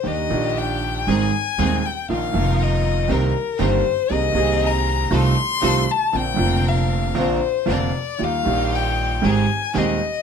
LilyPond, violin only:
\new Staff \with { instrumentName = "Violin" } { \time 4/4 \key ees \major \tempo 4 = 117 ees''4 g''4 aes''4. g''8 | f''4 ees''4 bes'4 c''4 | ees''4 bes''4 c'''4. a''8 | g''4 f''4 c''4 d''4 |
f''4 g''4 aes''4 ees''4 | }